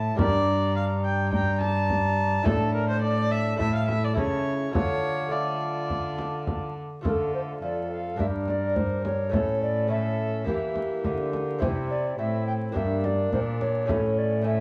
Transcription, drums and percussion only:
0, 0, Header, 1, 2, 480
1, 0, Start_track
1, 0, Key_signature, -1, "minor"
1, 0, Tempo, 570885
1, 161, Time_signature, 4, 2, 24, 8
1, 12279, End_track
2, 0, Start_track
2, 0, Title_t, "Frame drum"
2, 157, Note_on_c, 9, 64, 80
2, 241, Note_off_c, 9, 64, 0
2, 1113, Note_on_c, 9, 64, 50
2, 1197, Note_off_c, 9, 64, 0
2, 1352, Note_on_c, 9, 64, 50
2, 1436, Note_off_c, 9, 64, 0
2, 1594, Note_on_c, 9, 64, 50
2, 1678, Note_off_c, 9, 64, 0
2, 2067, Note_on_c, 9, 64, 82
2, 2151, Note_off_c, 9, 64, 0
2, 3026, Note_on_c, 9, 64, 48
2, 3110, Note_off_c, 9, 64, 0
2, 3267, Note_on_c, 9, 64, 51
2, 3351, Note_off_c, 9, 64, 0
2, 3506, Note_on_c, 9, 64, 54
2, 3590, Note_off_c, 9, 64, 0
2, 3995, Note_on_c, 9, 64, 73
2, 4079, Note_off_c, 9, 64, 0
2, 4960, Note_on_c, 9, 64, 42
2, 5044, Note_off_c, 9, 64, 0
2, 5201, Note_on_c, 9, 64, 51
2, 5285, Note_off_c, 9, 64, 0
2, 5442, Note_on_c, 9, 64, 52
2, 5526, Note_off_c, 9, 64, 0
2, 5928, Note_on_c, 9, 64, 68
2, 6012, Note_off_c, 9, 64, 0
2, 6887, Note_on_c, 9, 64, 45
2, 6971, Note_off_c, 9, 64, 0
2, 7129, Note_on_c, 9, 64, 42
2, 7213, Note_off_c, 9, 64, 0
2, 7368, Note_on_c, 9, 64, 47
2, 7452, Note_off_c, 9, 64, 0
2, 7609, Note_on_c, 9, 64, 50
2, 7693, Note_off_c, 9, 64, 0
2, 7847, Note_on_c, 9, 64, 68
2, 7931, Note_off_c, 9, 64, 0
2, 8804, Note_on_c, 9, 64, 44
2, 8888, Note_off_c, 9, 64, 0
2, 9044, Note_on_c, 9, 64, 46
2, 9128, Note_off_c, 9, 64, 0
2, 9285, Note_on_c, 9, 64, 47
2, 9369, Note_off_c, 9, 64, 0
2, 9529, Note_on_c, 9, 64, 46
2, 9613, Note_off_c, 9, 64, 0
2, 9768, Note_on_c, 9, 64, 68
2, 9852, Note_off_c, 9, 64, 0
2, 10727, Note_on_c, 9, 64, 46
2, 10811, Note_off_c, 9, 64, 0
2, 10964, Note_on_c, 9, 64, 49
2, 11049, Note_off_c, 9, 64, 0
2, 11204, Note_on_c, 9, 64, 46
2, 11288, Note_off_c, 9, 64, 0
2, 11444, Note_on_c, 9, 64, 47
2, 11528, Note_off_c, 9, 64, 0
2, 11681, Note_on_c, 9, 64, 69
2, 11765, Note_off_c, 9, 64, 0
2, 12279, End_track
0, 0, End_of_file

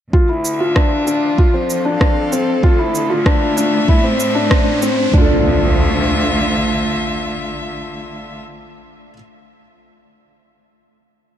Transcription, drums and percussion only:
0, 0, Header, 1, 2, 480
1, 0, Start_track
1, 0, Key_signature, -1, "minor"
1, 0, Tempo, 625000
1, 105, Time_signature, 4, 2, 24, 8
1, 8739, End_track
2, 0, Start_track
2, 0, Title_t, "Drums"
2, 102, Note_on_c, 9, 36, 83
2, 179, Note_off_c, 9, 36, 0
2, 343, Note_on_c, 9, 82, 54
2, 420, Note_off_c, 9, 82, 0
2, 582, Note_on_c, 9, 37, 83
2, 583, Note_on_c, 9, 36, 88
2, 659, Note_off_c, 9, 37, 0
2, 660, Note_off_c, 9, 36, 0
2, 824, Note_on_c, 9, 82, 58
2, 901, Note_off_c, 9, 82, 0
2, 1063, Note_on_c, 9, 36, 91
2, 1139, Note_off_c, 9, 36, 0
2, 1304, Note_on_c, 9, 82, 56
2, 1381, Note_off_c, 9, 82, 0
2, 1542, Note_on_c, 9, 36, 91
2, 1543, Note_on_c, 9, 37, 94
2, 1619, Note_off_c, 9, 36, 0
2, 1620, Note_off_c, 9, 37, 0
2, 1785, Note_on_c, 9, 82, 57
2, 1862, Note_off_c, 9, 82, 0
2, 2022, Note_on_c, 9, 36, 101
2, 2099, Note_off_c, 9, 36, 0
2, 2264, Note_on_c, 9, 82, 57
2, 2341, Note_off_c, 9, 82, 0
2, 2502, Note_on_c, 9, 36, 110
2, 2504, Note_on_c, 9, 37, 94
2, 2579, Note_off_c, 9, 36, 0
2, 2580, Note_off_c, 9, 37, 0
2, 2745, Note_on_c, 9, 82, 62
2, 2822, Note_off_c, 9, 82, 0
2, 2982, Note_on_c, 9, 36, 100
2, 3059, Note_off_c, 9, 36, 0
2, 3223, Note_on_c, 9, 82, 65
2, 3300, Note_off_c, 9, 82, 0
2, 3463, Note_on_c, 9, 36, 100
2, 3463, Note_on_c, 9, 37, 100
2, 3540, Note_off_c, 9, 36, 0
2, 3540, Note_off_c, 9, 37, 0
2, 3703, Note_on_c, 9, 82, 65
2, 3780, Note_off_c, 9, 82, 0
2, 3944, Note_on_c, 9, 36, 109
2, 4021, Note_off_c, 9, 36, 0
2, 8739, End_track
0, 0, End_of_file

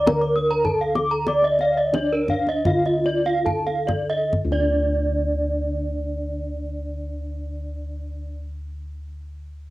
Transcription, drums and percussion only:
0, 0, Header, 1, 2, 480
1, 0, Start_track
1, 0, Tempo, 580271
1, 536, Tempo, 646552
1, 999, Time_signature, 4, 2, 24, 8
1, 1496, Tempo, 724638
1, 1976, Tempo, 789474
1, 2456, Tempo, 865801
1, 2936, Tempo, 909091
1, 5777, End_track
2, 0, Start_track
2, 0, Title_t, "Kendang"
2, 61, Note_on_c, 9, 63, 77
2, 61, Note_on_c, 9, 64, 92
2, 143, Note_off_c, 9, 63, 0
2, 143, Note_off_c, 9, 64, 0
2, 178, Note_on_c, 9, 62, 25
2, 261, Note_off_c, 9, 62, 0
2, 298, Note_on_c, 9, 62, 20
2, 380, Note_off_c, 9, 62, 0
2, 536, Note_on_c, 9, 64, 65
2, 611, Note_off_c, 9, 64, 0
2, 763, Note_on_c, 9, 62, 27
2, 763, Note_on_c, 9, 63, 65
2, 837, Note_off_c, 9, 62, 0
2, 837, Note_off_c, 9, 63, 0
2, 995, Note_on_c, 9, 63, 59
2, 1069, Note_off_c, 9, 63, 0
2, 1110, Note_on_c, 9, 62, 25
2, 1184, Note_off_c, 9, 62, 0
2, 1234, Note_on_c, 9, 62, 27
2, 1308, Note_off_c, 9, 62, 0
2, 1492, Note_on_c, 9, 62, 27
2, 1492, Note_on_c, 9, 63, 75
2, 1559, Note_off_c, 9, 62, 0
2, 1559, Note_off_c, 9, 63, 0
2, 1722, Note_on_c, 9, 62, 28
2, 1722, Note_on_c, 9, 64, 61
2, 1788, Note_off_c, 9, 62, 0
2, 1788, Note_off_c, 9, 64, 0
2, 1845, Note_on_c, 9, 62, 30
2, 1911, Note_off_c, 9, 62, 0
2, 1967, Note_on_c, 9, 64, 80
2, 2029, Note_off_c, 9, 64, 0
2, 2091, Note_on_c, 9, 62, 26
2, 2152, Note_off_c, 9, 62, 0
2, 2205, Note_on_c, 9, 62, 19
2, 2266, Note_off_c, 9, 62, 0
2, 2334, Note_on_c, 9, 62, 24
2, 2394, Note_off_c, 9, 62, 0
2, 2460, Note_on_c, 9, 64, 64
2, 2515, Note_off_c, 9, 64, 0
2, 2574, Note_on_c, 9, 62, 25
2, 2630, Note_off_c, 9, 62, 0
2, 2694, Note_on_c, 9, 62, 26
2, 2694, Note_on_c, 9, 63, 62
2, 2694, Note_on_c, 9, 64, 61
2, 2749, Note_off_c, 9, 62, 0
2, 2749, Note_off_c, 9, 63, 0
2, 2749, Note_off_c, 9, 64, 0
2, 2939, Note_on_c, 9, 64, 71
2, 2992, Note_off_c, 9, 64, 0
2, 5777, End_track
0, 0, End_of_file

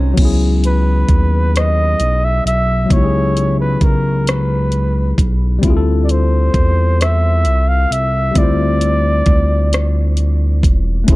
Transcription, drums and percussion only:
0, 0, Header, 1, 2, 480
1, 0, Start_track
1, 0, Tempo, 909091
1, 91, Time_signature, 6, 3, 24, 8
1, 5891, End_track
2, 0, Start_track
2, 0, Title_t, "Drums"
2, 92, Note_on_c, 9, 42, 71
2, 93, Note_on_c, 9, 36, 98
2, 93, Note_on_c, 9, 49, 82
2, 145, Note_off_c, 9, 42, 0
2, 145, Note_off_c, 9, 49, 0
2, 146, Note_off_c, 9, 36, 0
2, 336, Note_on_c, 9, 42, 45
2, 389, Note_off_c, 9, 42, 0
2, 573, Note_on_c, 9, 42, 39
2, 574, Note_on_c, 9, 36, 80
2, 626, Note_off_c, 9, 36, 0
2, 626, Note_off_c, 9, 42, 0
2, 822, Note_on_c, 9, 42, 62
2, 829, Note_on_c, 9, 37, 101
2, 875, Note_off_c, 9, 42, 0
2, 882, Note_off_c, 9, 37, 0
2, 1054, Note_on_c, 9, 42, 48
2, 1107, Note_off_c, 9, 42, 0
2, 1304, Note_on_c, 9, 42, 53
2, 1356, Note_off_c, 9, 42, 0
2, 1533, Note_on_c, 9, 36, 96
2, 1534, Note_on_c, 9, 42, 70
2, 1586, Note_off_c, 9, 36, 0
2, 1587, Note_off_c, 9, 42, 0
2, 1778, Note_on_c, 9, 42, 46
2, 1831, Note_off_c, 9, 42, 0
2, 2012, Note_on_c, 9, 42, 41
2, 2013, Note_on_c, 9, 36, 81
2, 2065, Note_off_c, 9, 36, 0
2, 2065, Note_off_c, 9, 42, 0
2, 2257, Note_on_c, 9, 42, 61
2, 2264, Note_on_c, 9, 37, 97
2, 2309, Note_off_c, 9, 42, 0
2, 2317, Note_off_c, 9, 37, 0
2, 2491, Note_on_c, 9, 42, 47
2, 2544, Note_off_c, 9, 42, 0
2, 2735, Note_on_c, 9, 36, 84
2, 2740, Note_on_c, 9, 42, 55
2, 2788, Note_off_c, 9, 36, 0
2, 2793, Note_off_c, 9, 42, 0
2, 2972, Note_on_c, 9, 36, 98
2, 2972, Note_on_c, 9, 42, 74
2, 3025, Note_off_c, 9, 36, 0
2, 3025, Note_off_c, 9, 42, 0
2, 3217, Note_on_c, 9, 42, 48
2, 3269, Note_off_c, 9, 42, 0
2, 3453, Note_on_c, 9, 36, 85
2, 3455, Note_on_c, 9, 42, 44
2, 3506, Note_off_c, 9, 36, 0
2, 3507, Note_off_c, 9, 42, 0
2, 3701, Note_on_c, 9, 42, 62
2, 3708, Note_on_c, 9, 37, 99
2, 3754, Note_off_c, 9, 42, 0
2, 3761, Note_off_c, 9, 37, 0
2, 3933, Note_on_c, 9, 42, 48
2, 3985, Note_off_c, 9, 42, 0
2, 4183, Note_on_c, 9, 42, 57
2, 4235, Note_off_c, 9, 42, 0
2, 4411, Note_on_c, 9, 42, 80
2, 4412, Note_on_c, 9, 36, 101
2, 4464, Note_off_c, 9, 42, 0
2, 4465, Note_off_c, 9, 36, 0
2, 4653, Note_on_c, 9, 42, 46
2, 4705, Note_off_c, 9, 42, 0
2, 4888, Note_on_c, 9, 42, 47
2, 4891, Note_on_c, 9, 36, 83
2, 4941, Note_off_c, 9, 42, 0
2, 4944, Note_off_c, 9, 36, 0
2, 5137, Note_on_c, 9, 42, 63
2, 5144, Note_on_c, 9, 37, 104
2, 5189, Note_off_c, 9, 42, 0
2, 5197, Note_off_c, 9, 37, 0
2, 5369, Note_on_c, 9, 42, 51
2, 5422, Note_off_c, 9, 42, 0
2, 5614, Note_on_c, 9, 36, 85
2, 5620, Note_on_c, 9, 42, 56
2, 5667, Note_off_c, 9, 36, 0
2, 5672, Note_off_c, 9, 42, 0
2, 5850, Note_on_c, 9, 42, 84
2, 5851, Note_on_c, 9, 36, 115
2, 5891, Note_off_c, 9, 36, 0
2, 5891, Note_off_c, 9, 42, 0
2, 5891, End_track
0, 0, End_of_file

